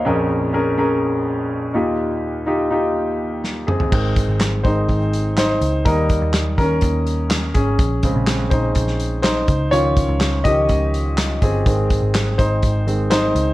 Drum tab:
CC |----------------|----------------|x---------------|----------------|
HH |----------------|----------------|--x-x-x-x-x-x-x-|x-x-x-x-x-x-x-x-|
CP |----------------|----------------|----x-------x---|----x-------x---|
SD |----------------|------------o---|----o-------o---|----o-------o---|
T2 |----------------|--------------o-|----------------|----------------|
FT |----------------|---------------o|----------------|----------------|
BD |----------------|----------------|o-o---o-o-------|o-o---o-o-----o-|

CC |----------------|----------------|----------------|
HH |x-x-x-x-x-x-x-x-|x-x-x-x-x-x-x-x-|x-x-x-x-x-x-x-x-|
CP |----x-------x---|----x-------x---|----x-------x---|
SD |----o----o--o---|----o-------o---|----o-------o---|
T2 |----------------|----------------|----------------|
FT |----------------|----------------|----------------|
BD |o-o---o-o-----o-|--o---o-o-----o-|o-o---o-o-------|